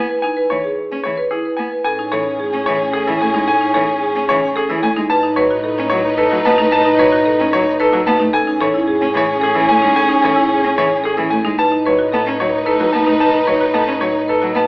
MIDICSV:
0, 0, Header, 1, 7, 480
1, 0, Start_track
1, 0, Tempo, 540541
1, 210, Time_signature, 3, 2, 24, 8
1, 13029, End_track
2, 0, Start_track
2, 0, Title_t, "Grand piano"
2, 0, Program_c, 0, 0
2, 0, Note_on_c, 0, 80, 57
2, 120, Note_off_c, 0, 80, 0
2, 197, Note_on_c, 0, 80, 59
2, 361, Note_off_c, 0, 80, 0
2, 444, Note_on_c, 0, 73, 47
2, 603, Note_off_c, 0, 73, 0
2, 919, Note_on_c, 0, 73, 57
2, 1082, Note_off_c, 0, 73, 0
2, 1161, Note_on_c, 0, 68, 45
2, 1322, Note_off_c, 0, 68, 0
2, 1391, Note_on_c, 0, 80, 44
2, 1559, Note_off_c, 0, 80, 0
2, 1638, Note_on_c, 0, 80, 70
2, 1801, Note_off_c, 0, 80, 0
2, 1879, Note_on_c, 0, 73, 55
2, 2042, Note_off_c, 0, 73, 0
2, 2363, Note_on_c, 0, 73, 68
2, 2523, Note_off_c, 0, 73, 0
2, 2606, Note_on_c, 0, 68, 53
2, 2764, Note_off_c, 0, 68, 0
2, 2855, Note_on_c, 0, 80, 54
2, 3007, Note_off_c, 0, 80, 0
2, 3088, Note_on_c, 0, 80, 70
2, 3245, Note_off_c, 0, 80, 0
2, 3320, Note_on_c, 0, 73, 56
2, 3482, Note_off_c, 0, 73, 0
2, 3808, Note_on_c, 0, 73, 78
2, 3965, Note_off_c, 0, 73, 0
2, 4054, Note_on_c, 0, 68, 58
2, 4207, Note_off_c, 0, 68, 0
2, 4290, Note_on_c, 0, 80, 60
2, 4445, Note_off_c, 0, 80, 0
2, 4526, Note_on_c, 0, 81, 75
2, 4684, Note_off_c, 0, 81, 0
2, 4761, Note_on_c, 0, 73, 61
2, 4922, Note_off_c, 0, 73, 0
2, 5236, Note_on_c, 0, 73, 76
2, 5400, Note_off_c, 0, 73, 0
2, 5487, Note_on_c, 0, 69, 60
2, 5644, Note_off_c, 0, 69, 0
2, 5730, Note_on_c, 0, 81, 58
2, 5885, Note_off_c, 0, 81, 0
2, 5968, Note_on_c, 0, 81, 82
2, 6125, Note_off_c, 0, 81, 0
2, 6210, Note_on_c, 0, 73, 68
2, 6365, Note_off_c, 0, 73, 0
2, 6687, Note_on_c, 0, 73, 81
2, 6844, Note_off_c, 0, 73, 0
2, 6929, Note_on_c, 0, 69, 65
2, 7085, Note_off_c, 0, 69, 0
2, 7165, Note_on_c, 0, 81, 65
2, 7324, Note_off_c, 0, 81, 0
2, 7403, Note_on_c, 0, 80, 81
2, 7563, Note_off_c, 0, 80, 0
2, 7649, Note_on_c, 0, 73, 65
2, 7805, Note_off_c, 0, 73, 0
2, 8142, Note_on_c, 0, 73, 77
2, 8289, Note_off_c, 0, 73, 0
2, 8377, Note_on_c, 0, 68, 60
2, 8528, Note_off_c, 0, 68, 0
2, 8606, Note_on_c, 0, 80, 62
2, 8764, Note_off_c, 0, 80, 0
2, 8846, Note_on_c, 0, 80, 78
2, 9004, Note_off_c, 0, 80, 0
2, 9099, Note_on_c, 0, 73, 64
2, 9249, Note_off_c, 0, 73, 0
2, 9572, Note_on_c, 0, 73, 77
2, 9726, Note_off_c, 0, 73, 0
2, 9815, Note_on_c, 0, 68, 56
2, 9967, Note_off_c, 0, 68, 0
2, 10037, Note_on_c, 0, 80, 56
2, 10201, Note_off_c, 0, 80, 0
2, 10289, Note_on_c, 0, 81, 77
2, 10445, Note_off_c, 0, 81, 0
2, 10535, Note_on_c, 0, 73, 58
2, 10687, Note_off_c, 0, 73, 0
2, 10777, Note_on_c, 0, 81, 57
2, 10928, Note_off_c, 0, 81, 0
2, 11011, Note_on_c, 0, 73, 64
2, 11166, Note_off_c, 0, 73, 0
2, 11242, Note_on_c, 0, 69, 53
2, 11403, Note_off_c, 0, 69, 0
2, 11479, Note_on_c, 0, 81, 51
2, 11641, Note_off_c, 0, 81, 0
2, 11724, Note_on_c, 0, 81, 66
2, 11883, Note_off_c, 0, 81, 0
2, 11964, Note_on_c, 0, 73, 54
2, 12123, Note_off_c, 0, 73, 0
2, 12201, Note_on_c, 0, 81, 54
2, 12362, Note_off_c, 0, 81, 0
2, 12440, Note_on_c, 0, 73, 63
2, 12602, Note_off_c, 0, 73, 0
2, 12692, Note_on_c, 0, 69, 54
2, 12846, Note_off_c, 0, 69, 0
2, 12933, Note_on_c, 0, 81, 54
2, 13029, Note_off_c, 0, 81, 0
2, 13029, End_track
3, 0, Start_track
3, 0, Title_t, "Marimba"
3, 0, Program_c, 1, 12
3, 85, Note_on_c, 1, 71, 50
3, 209, Note_on_c, 1, 63, 47
3, 244, Note_off_c, 1, 71, 0
3, 326, Note_on_c, 1, 71, 58
3, 365, Note_off_c, 1, 63, 0
3, 484, Note_off_c, 1, 71, 0
3, 568, Note_on_c, 1, 68, 46
3, 725, Note_off_c, 1, 68, 0
3, 1043, Note_on_c, 1, 71, 59
3, 1167, Note_on_c, 1, 64, 47
3, 1203, Note_off_c, 1, 71, 0
3, 1289, Note_on_c, 1, 71, 42
3, 1325, Note_off_c, 1, 64, 0
3, 1445, Note_off_c, 1, 71, 0
3, 1524, Note_on_c, 1, 71, 42
3, 1648, Note_on_c, 1, 69, 57
3, 1683, Note_off_c, 1, 71, 0
3, 1767, Note_on_c, 1, 63, 54
3, 1805, Note_off_c, 1, 69, 0
3, 1884, Note_on_c, 1, 69, 67
3, 1924, Note_off_c, 1, 63, 0
3, 2043, Note_off_c, 1, 69, 0
3, 2127, Note_on_c, 1, 68, 54
3, 2284, Note_off_c, 1, 68, 0
3, 2607, Note_on_c, 1, 69, 66
3, 2726, Note_on_c, 1, 64, 56
3, 2764, Note_off_c, 1, 69, 0
3, 2847, Note_on_c, 1, 69, 56
3, 2884, Note_off_c, 1, 64, 0
3, 2967, Note_on_c, 1, 63, 66
3, 3004, Note_off_c, 1, 69, 0
3, 3087, Note_on_c, 1, 69, 60
3, 3124, Note_off_c, 1, 63, 0
3, 3204, Note_on_c, 1, 63, 55
3, 3244, Note_off_c, 1, 69, 0
3, 3325, Note_on_c, 1, 69, 66
3, 3363, Note_off_c, 1, 63, 0
3, 3484, Note_off_c, 1, 69, 0
3, 3563, Note_on_c, 1, 68, 57
3, 3723, Note_off_c, 1, 68, 0
3, 4047, Note_on_c, 1, 69, 79
3, 4169, Note_on_c, 1, 64, 59
3, 4204, Note_off_c, 1, 69, 0
3, 4287, Note_on_c, 1, 69, 59
3, 4325, Note_off_c, 1, 64, 0
3, 4408, Note_on_c, 1, 63, 73
3, 4444, Note_off_c, 1, 69, 0
3, 4527, Note_on_c, 1, 71, 64
3, 4565, Note_off_c, 1, 63, 0
3, 4646, Note_on_c, 1, 63, 60
3, 4684, Note_off_c, 1, 71, 0
3, 4767, Note_on_c, 1, 71, 73
3, 4804, Note_off_c, 1, 63, 0
3, 4888, Note_on_c, 1, 66, 61
3, 4924, Note_off_c, 1, 71, 0
3, 5006, Note_on_c, 1, 69, 59
3, 5045, Note_off_c, 1, 66, 0
3, 5164, Note_off_c, 1, 69, 0
3, 5485, Note_on_c, 1, 71, 81
3, 5605, Note_on_c, 1, 66, 58
3, 5644, Note_off_c, 1, 71, 0
3, 5726, Note_on_c, 1, 71, 63
3, 5764, Note_off_c, 1, 66, 0
3, 5843, Note_on_c, 1, 63, 80
3, 5884, Note_off_c, 1, 71, 0
3, 5962, Note_on_c, 1, 71, 65
3, 6003, Note_off_c, 1, 63, 0
3, 6084, Note_on_c, 1, 63, 67
3, 6123, Note_off_c, 1, 71, 0
3, 6204, Note_on_c, 1, 71, 85
3, 6244, Note_off_c, 1, 63, 0
3, 6326, Note_on_c, 1, 66, 67
3, 6363, Note_off_c, 1, 71, 0
3, 6443, Note_on_c, 1, 69, 60
3, 6484, Note_off_c, 1, 66, 0
3, 6603, Note_off_c, 1, 69, 0
3, 6924, Note_on_c, 1, 71, 82
3, 7044, Note_on_c, 1, 66, 64
3, 7083, Note_off_c, 1, 71, 0
3, 7162, Note_on_c, 1, 71, 61
3, 7203, Note_off_c, 1, 66, 0
3, 7278, Note_on_c, 1, 63, 75
3, 7322, Note_off_c, 1, 71, 0
3, 7399, Note_on_c, 1, 69, 67
3, 7441, Note_off_c, 1, 63, 0
3, 7524, Note_on_c, 1, 63, 66
3, 7562, Note_off_c, 1, 69, 0
3, 7642, Note_on_c, 1, 69, 81
3, 7683, Note_off_c, 1, 63, 0
3, 7764, Note_on_c, 1, 64, 64
3, 7802, Note_off_c, 1, 69, 0
3, 7882, Note_on_c, 1, 68, 65
3, 7923, Note_off_c, 1, 64, 0
3, 8042, Note_off_c, 1, 68, 0
3, 8360, Note_on_c, 1, 69, 75
3, 8480, Note_on_c, 1, 64, 64
3, 8522, Note_off_c, 1, 69, 0
3, 8602, Note_on_c, 1, 69, 62
3, 8642, Note_off_c, 1, 64, 0
3, 8720, Note_on_c, 1, 63, 73
3, 8763, Note_off_c, 1, 69, 0
3, 8841, Note_on_c, 1, 69, 64
3, 8882, Note_off_c, 1, 63, 0
3, 8960, Note_on_c, 1, 63, 64
3, 9002, Note_off_c, 1, 69, 0
3, 9080, Note_on_c, 1, 69, 76
3, 9122, Note_off_c, 1, 63, 0
3, 9197, Note_on_c, 1, 64, 60
3, 9242, Note_off_c, 1, 69, 0
3, 9321, Note_on_c, 1, 68, 58
3, 9361, Note_off_c, 1, 64, 0
3, 9482, Note_off_c, 1, 68, 0
3, 9801, Note_on_c, 1, 69, 78
3, 9920, Note_on_c, 1, 64, 59
3, 9962, Note_off_c, 1, 69, 0
3, 10042, Note_on_c, 1, 69, 58
3, 10082, Note_off_c, 1, 64, 0
3, 10164, Note_on_c, 1, 63, 75
3, 10203, Note_off_c, 1, 69, 0
3, 10285, Note_on_c, 1, 71, 59
3, 10324, Note_off_c, 1, 63, 0
3, 10406, Note_on_c, 1, 63, 56
3, 10444, Note_off_c, 1, 71, 0
3, 10527, Note_on_c, 1, 71, 71
3, 10564, Note_off_c, 1, 63, 0
3, 10644, Note_on_c, 1, 66, 60
3, 10684, Note_off_c, 1, 71, 0
3, 10766, Note_on_c, 1, 69, 57
3, 10803, Note_off_c, 1, 66, 0
3, 10924, Note_off_c, 1, 69, 0
3, 11246, Note_on_c, 1, 71, 74
3, 11365, Note_on_c, 1, 66, 55
3, 11404, Note_off_c, 1, 71, 0
3, 11486, Note_on_c, 1, 71, 52
3, 11524, Note_off_c, 1, 66, 0
3, 11602, Note_on_c, 1, 63, 67
3, 11644, Note_off_c, 1, 71, 0
3, 11720, Note_on_c, 1, 71, 53
3, 11763, Note_off_c, 1, 63, 0
3, 11844, Note_on_c, 1, 63, 54
3, 11882, Note_off_c, 1, 71, 0
3, 11963, Note_on_c, 1, 71, 66
3, 12003, Note_off_c, 1, 63, 0
3, 12082, Note_on_c, 1, 66, 55
3, 12123, Note_off_c, 1, 71, 0
3, 12204, Note_on_c, 1, 69, 50
3, 12243, Note_off_c, 1, 66, 0
3, 12363, Note_off_c, 1, 69, 0
3, 12682, Note_on_c, 1, 71, 65
3, 12801, Note_on_c, 1, 66, 52
3, 12843, Note_off_c, 1, 71, 0
3, 12922, Note_on_c, 1, 71, 51
3, 12962, Note_off_c, 1, 66, 0
3, 13029, Note_off_c, 1, 71, 0
3, 13029, End_track
4, 0, Start_track
4, 0, Title_t, "String section"
4, 0, Program_c, 2, 48
4, 1649, Note_on_c, 2, 68, 65
4, 1651, Note_on_c, 2, 61, 61
4, 4374, Note_off_c, 2, 68, 0
4, 4375, Note_off_c, 2, 61, 0
4, 4532, Note_on_c, 2, 63, 68
4, 4537, Note_on_c, 2, 71, 68
4, 7255, Note_off_c, 2, 63, 0
4, 7257, Note_off_c, 2, 71, 0
4, 7405, Note_on_c, 2, 68, 74
4, 7410, Note_on_c, 2, 61, 68
4, 10131, Note_off_c, 2, 68, 0
4, 10134, Note_off_c, 2, 61, 0
4, 10284, Note_on_c, 2, 63, 66
4, 10287, Note_on_c, 2, 71, 64
4, 13011, Note_off_c, 2, 63, 0
4, 13012, Note_off_c, 2, 71, 0
4, 13029, End_track
5, 0, Start_track
5, 0, Title_t, "Soprano saxophone"
5, 0, Program_c, 3, 64
5, 1647, Note_on_c, 3, 61, 63
5, 4373, Note_off_c, 3, 61, 0
5, 4530, Note_on_c, 3, 63, 70
5, 7254, Note_off_c, 3, 63, 0
5, 7413, Note_on_c, 3, 61, 71
5, 10136, Note_off_c, 3, 61, 0
5, 10293, Note_on_c, 3, 63, 64
5, 13016, Note_off_c, 3, 63, 0
5, 13029, End_track
6, 0, Start_track
6, 0, Title_t, "Cello"
6, 0, Program_c, 4, 42
6, 454, Note_on_c, 4, 52, 42
6, 542, Note_off_c, 4, 52, 0
6, 816, Note_on_c, 4, 61, 48
6, 903, Note_off_c, 4, 61, 0
6, 935, Note_on_c, 4, 52, 56
6, 1023, Note_off_c, 4, 52, 0
6, 1406, Note_on_c, 4, 59, 46
6, 1497, Note_off_c, 4, 59, 0
6, 1885, Note_on_c, 4, 52, 50
6, 1977, Note_off_c, 4, 52, 0
6, 2248, Note_on_c, 4, 61, 54
6, 2338, Note_off_c, 4, 61, 0
6, 2375, Note_on_c, 4, 52, 72
6, 2463, Note_off_c, 4, 52, 0
6, 2730, Note_on_c, 4, 52, 69
6, 2819, Note_off_c, 4, 52, 0
6, 2854, Note_on_c, 4, 57, 56
6, 2942, Note_off_c, 4, 57, 0
6, 2969, Note_on_c, 4, 56, 57
6, 3059, Note_off_c, 4, 56, 0
6, 3329, Note_on_c, 4, 52, 56
6, 3419, Note_off_c, 4, 52, 0
6, 3689, Note_on_c, 4, 61, 61
6, 3779, Note_off_c, 4, 61, 0
6, 3811, Note_on_c, 4, 52, 78
6, 3900, Note_off_c, 4, 52, 0
6, 4170, Note_on_c, 4, 52, 73
6, 4260, Note_off_c, 4, 52, 0
6, 4288, Note_on_c, 4, 57, 62
6, 4379, Note_off_c, 4, 57, 0
6, 4411, Note_on_c, 4, 56, 61
6, 4500, Note_off_c, 4, 56, 0
6, 4770, Note_on_c, 4, 54, 54
6, 4860, Note_off_c, 4, 54, 0
6, 5133, Note_on_c, 4, 61, 62
6, 5222, Note_off_c, 4, 61, 0
6, 5253, Note_on_c, 4, 54, 77
6, 5342, Note_off_c, 4, 54, 0
6, 5606, Note_on_c, 4, 54, 78
6, 5697, Note_off_c, 4, 54, 0
6, 5730, Note_on_c, 4, 59, 66
6, 5820, Note_off_c, 4, 59, 0
6, 5845, Note_on_c, 4, 57, 65
6, 5936, Note_off_c, 4, 57, 0
6, 6204, Note_on_c, 4, 54, 61
6, 6296, Note_off_c, 4, 54, 0
6, 6567, Note_on_c, 4, 61, 65
6, 6658, Note_off_c, 4, 61, 0
6, 6686, Note_on_c, 4, 54, 86
6, 6777, Note_off_c, 4, 54, 0
6, 7039, Note_on_c, 4, 54, 82
6, 7133, Note_off_c, 4, 54, 0
6, 7164, Note_on_c, 4, 59, 61
6, 7256, Note_off_c, 4, 59, 0
6, 7278, Note_on_c, 4, 57, 62
6, 7372, Note_off_c, 4, 57, 0
6, 7639, Note_on_c, 4, 52, 56
6, 7733, Note_off_c, 4, 52, 0
6, 8002, Note_on_c, 4, 61, 65
6, 8095, Note_off_c, 4, 61, 0
6, 8117, Note_on_c, 4, 52, 83
6, 8211, Note_off_c, 4, 52, 0
6, 8481, Note_on_c, 4, 52, 76
6, 8574, Note_off_c, 4, 52, 0
6, 8604, Note_on_c, 4, 57, 64
6, 8696, Note_off_c, 4, 57, 0
6, 8728, Note_on_c, 4, 56, 61
6, 8819, Note_off_c, 4, 56, 0
6, 9085, Note_on_c, 4, 52, 55
6, 9177, Note_off_c, 4, 52, 0
6, 9448, Note_on_c, 4, 61, 62
6, 9538, Note_off_c, 4, 61, 0
6, 9564, Note_on_c, 4, 52, 78
6, 9656, Note_off_c, 4, 52, 0
6, 9923, Note_on_c, 4, 52, 78
6, 10015, Note_off_c, 4, 52, 0
6, 10047, Note_on_c, 4, 57, 61
6, 10138, Note_off_c, 4, 57, 0
6, 10170, Note_on_c, 4, 56, 58
6, 10259, Note_off_c, 4, 56, 0
6, 10533, Note_on_c, 4, 54, 51
6, 10622, Note_off_c, 4, 54, 0
6, 10774, Note_on_c, 4, 59, 58
6, 10862, Note_off_c, 4, 59, 0
6, 10891, Note_on_c, 4, 61, 54
6, 10981, Note_off_c, 4, 61, 0
6, 11009, Note_on_c, 4, 54, 71
6, 11099, Note_off_c, 4, 54, 0
6, 11363, Note_on_c, 4, 54, 63
6, 11455, Note_off_c, 4, 54, 0
6, 11494, Note_on_c, 4, 59, 52
6, 11582, Note_off_c, 4, 59, 0
6, 11606, Note_on_c, 4, 57, 53
6, 11697, Note_off_c, 4, 57, 0
6, 11961, Note_on_c, 4, 54, 50
6, 12054, Note_off_c, 4, 54, 0
6, 12197, Note_on_c, 4, 59, 55
6, 12292, Note_off_c, 4, 59, 0
6, 12317, Note_on_c, 4, 61, 54
6, 12412, Note_off_c, 4, 61, 0
6, 12436, Note_on_c, 4, 54, 68
6, 12531, Note_off_c, 4, 54, 0
6, 12808, Note_on_c, 4, 54, 62
6, 12898, Note_off_c, 4, 54, 0
6, 12919, Note_on_c, 4, 59, 53
6, 13013, Note_off_c, 4, 59, 0
6, 13029, End_track
7, 0, Start_track
7, 0, Title_t, "Double bass section"
7, 0, Program_c, 5, 48
7, 1647, Note_on_c, 5, 45, 62
7, 4396, Note_off_c, 5, 45, 0
7, 4530, Note_on_c, 5, 45, 67
7, 7278, Note_off_c, 5, 45, 0
7, 7413, Note_on_c, 5, 45, 68
7, 10160, Note_off_c, 5, 45, 0
7, 10286, Note_on_c, 5, 45, 64
7, 13029, Note_off_c, 5, 45, 0
7, 13029, End_track
0, 0, End_of_file